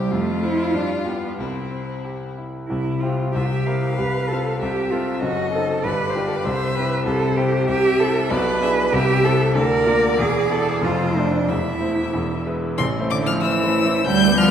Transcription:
Already playing: C2 G3 E4 G4 C5
0.11 F2 A3 F4
0.43 E4 F4 C5
0.74 G2 D4
1.05 B3 F4 G4
1.38 C2 C4 E4
1.71 C4
2.04 G4
2.38 E4
2.68 C2 C3 E4
3.00 C4 E4 F4 G4
3.32 C2 C3 G4 E5
3.38 F4
3.45 G4
3.66 C4 E4 A#4 F5
3.96 C2 C3 B4
4.28 C4 F4 A4
4.59 C2 C3 G4 E5
4.90 C4 F4 A4
5.20 F#1 F#2 F#4 D#5
5.53 C4 D#4 A4
5.82 G1 G2 B4 D5
6.09 C5
6.15 D4 F4 G4 B4
6.27 A4
6.35 B4
6.44 C2 C3 C5 E5
6.75 C4 E4 G4 B4
7.05 C2 C3 A4 C5
7.36 C4 E4 G4
7.68 C2 C3 G4 E5
7.98 C4 E4 A4
8.30 B1 B2 B4 D5
8.61 D4 E4 G#4 E5
8.92 C2 C3 G4 E5
9.24 C4 E4 A4
9.55 D2 D3 A#4 D5
9.86 A#3 F4 D5
10.18 E1 E2 G#4
10.50 B3 E4 A4 D5
10.68 G#4
10.81 F1 F2 F4 C5
11.15 A3 C4 D4 C5
11.48 E1 E2 E4 E5
11.80 A3 E4 C5
12.14 E1 E2
12.46 G#3 E4 B4
12.78 A1 C3 C6
12.99 A3 E4 C5
13.10 D3 D6
13.21 A3 E4 C5
13.26 F3 F6
13.41 E3 A3 E4 C5 E6
13.63 A3 E4 C5
13.85 A3 E4 C5
14.06 D2 G3 G6
14.27 B3 D4 B4
14.37 F3 F6
14.47 B3 D4

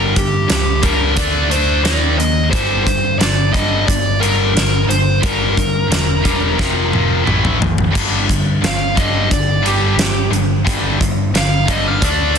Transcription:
Already playing: G1 G2 D3 G3 A#4
0.15 G2 D3 G4, kick, closed hi-hat
0.49 C#2 G2 D3 G4, snare, closed hi-hat
0.82 G2 D3 G3 A#4, kick, closed hi-hat
1.16 D2 D3 A3 D4 D5, kick, closed hi-hat
1.48 D3 A3 D4 C5, closed hi-hat
1.83 D#2 D#3 A#3 D#4 D5, snare, closed hi-hat
2.17 D#2 D#3 A#3 D#5, closed hi-hat
2.50 G1 G2 D3 G3 C5, kick, closed hi-hat
2.84 G2 D3 C5, kick, closed hi-hat
3.18 G1 G2 D3 D5, snare, closed hi-hat
3.52 G2 D3 G3 D#5, kick, closed hi-hat
3.87 G1 G2 D3 D5, kick, closed hi-hat
4.19 G2 D3 G3 A#4, closed hi-hat
4.53 G1 G2 D3, snare, closed hi-hat
4.87 G1 G2 D3 C5, closed hi-hat
5.20 G1 G2 D3 G3 A#4, kick, closed hi-hat
5.55 G2 D3, kick, closed hi-hat
5.87 E1 G2 D3
5.92 snare, closed hi-hat
6.21 G2 D3 G3
6.25 kick, closed hi-hat
6.54 F2 C3 F3
6.59 F1, kick, snare
6.89 F2 C3 F3, high tom
7.22 A2 E3 A3
7.27 A1, mid tom
7.45 mid tom
7.58 F#1 A2 E3
7.62 floor tom
7.78 floor tom
7.91 G2 D3 G3
7.95 G1, kick, closed hi-hat, crash
8.26 G2 D3, kick
8.31 closed hi-hat
8.61 G1 G2 D3, snare, closed hi-hat
8.65 F5
8.96 G2 D3 G3 D#5, kick, closed hi-hat
9.30 G1 G2 D3 D5, kick, closed hi-hat
9.62 G2 D3 G3 G4, closed hi-hat
9.95 G1 G2 D3, snare, closed hi-hat
10.30 G1 G2 D3, closed hi-hat
10.65 G1 G2 D3 G3, kick, closed hi-hat
11.01 G2 D3, kick, closed hi-hat
11.31 G1 G2
11.35 D3 F5, snare, closed hi-hat
11.66 G2 D3 G3, kick, closed hi-hat
11.71 D#5
11.88 F5
11.99 D2 D3 A3 D4, kick, closed hi-hat
12.05 D5
12.34 D3 A3 D4

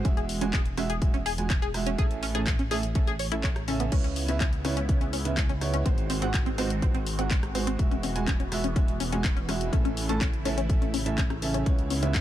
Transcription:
0.05 E1 G#3 C#4 F#4 E5, kick, closed hi-hat
0.17 G#4, closed hi-hat
0.29 open hi-hat
0.41 G#3 C#4 F#4 G#5, closed hi-hat
0.53 G#4, kick, clap, closed hi-hat
0.65 closed hi-hat
0.77 G#3 C#4 F#4 E5, cross-stick, open hi-hat
0.90 G#4, closed hi-hat
1.02 G#3 F#4 E5, kick, closed hi-hat
1.14 C#4, closed hi-hat
1.26 G#4, open hi-hat
1.38 G#3 F#4 G#5, closed hi-hat
1.50 C#4, kick, clap, closed hi-hat
1.62 G#4, closed hi-hat
1.74 G#3 F#4 E5, cross-stick, open hi-hat
1.86 C#4, closed hi-hat
1.98 A1 A2 C#4 G#4 A4 E5, kick, closed hi-hat
2.11 closed hi-hat
2.23 C#4, open hi-hat
2.35 A2 C#4 G#4 A4 A5, closed hi-hat
2.47 kick, clap, closed hi-hat
2.59 C#4, closed hi-hat
2.71 A2 C#4 G#4 A4 E5, open hi-hat
2.83 closed hi-hat
2.95 A2 C#4 A4 E5, kick, closed hi-hat
3.07 G#4, closed hi-hat
3.19 C#5, open hi-hat
3.32 A2 C#4 E4 A4 E5, closed hi-hat
3.44 C#5, kick, clap, closed hi-hat
3.56 cross-stick, closed hi-hat
3.68 C#3 C#4 A4 E5, open hi-hat
3.80 B3, closed hi-hat
3.92 C#2 C#3 G#3 B3 C#4 E4 C#5, kick, closed hi-hat, crash
4.04 C#4, closed hi-hat
4.16 open hi-hat
4.28 C#3 B3 C#4 E4 E5, closed hi-hat
4.40 C#4, kick, clap, closed hi-hat
4.53 closed hi-hat
4.65 C#3 B3 C#4 E4 C#5, cross-stick, open hi-hat
4.77 C#4, closed hi-hat
4.89 C#3 B3 E4 C#5, kick, closed hi-hat
5.01 C#4, closed hi-hat
5.13 C#4, open hi-hat
5.25 C#3 B3 E4 E5, closed hi-hat
5.37 C#4, kick, clap, closed hi-hat
5.49 C#4, closed hi-hat
5.61 B3 E4 C#5, cross-stick, open hi-hat
5.74 C#4, closed hi-hat
5.86 G#1 G#2 D#3 G#3 C4 F#4 C5, kick, closed hi-hat
5.98 closed hi-hat
6.10 C4, open hi-hat
6.22 G#2 G#3 C4 F#4 F#5, closed hi-hat
6.34 kick, clap, closed hi-hat
6.46 C4, closed hi-hat
6.58 G#2 G#3 C4 F#4 C5, open hi-hat
6.70 closed hi-hat
6.82 G#2 G#3 C4 F#4 C5, kick, closed hi-hat
6.94 C4, closed hi-hat
7.07 open hi-hat
7.19 G#2 G#3 C4 F#4 F#5, closed hi-hat
7.31 C4, kick, clap, closed hi-hat
7.43 cross-stick, closed hi-hat
7.55 G#3 C4 F#4 C5, open hi-hat
7.67 C4, closed hi-hat
7.79 E1 E3 G#3 B3 F#4 E5, kick, closed hi-hat
7.91 C#4, closed hi-hat
8.03 C#4, open hi-hat
8.16 G#3 F#4 G#5, closed hi-hat
8.28 C#4, kick, clap, closed hi-hat
8.40 C#4, closed hi-hat
8.52 G#3 F#4 E5, cross-stick, open hi-hat
8.64 C#4, closed hi-hat
8.76 G#3 C#4 F#4 E5, kick, closed hi-hat
8.88 closed hi-hat
9.00 C#4, open hi-hat
9.12 G#3 C#4 F#4 G#5, closed hi-hat
9.24 kick, clap, closed hi-hat
9.37 C#4, closed hi-hat
9.49 G#3 C#4 F#4 E5, cross-stick, open hi-hat
9.61 closed hi-hat
9.73 A1 A2 C#3 A3 C#4 E4 A4 E5, kick, closed hi-hat
9.85 C#4, closed hi-hat
9.97 open hi-hat
10.09 A2 C#4 A4 A5, closed hi-hat
10.21 C#4, kick, clap, closed hi-hat
10.33 closed hi-hat
10.45 A2 C#4 A4 E5, open hi-hat
10.58 C#4, closed hi-hat
10.69 A2 C#4 A4 E5, kick, closed hi-hat
10.82 C#4, closed hi-hat
10.94 C#4, open hi-hat
11.06 A2 C#4 A4 E5, closed hi-hat
11.18 C#4, kick, clap, closed hi-hat
11.30 C#4, cross-stick, closed hi-hat
11.42 C#3 C#4 A4 E5, open hi-hat
11.54 C#4, closed hi-hat
11.66 C#2 C#3 G#3 B3 C#4 E4 C#5, kick, closed hi-hat
11.79 closed hi-hat
11.90 C#4, open hi-hat
12.03 C#3 B3 C#4 E4 E5, closed hi-hat
12.15 kick, clap, closed hi-hat

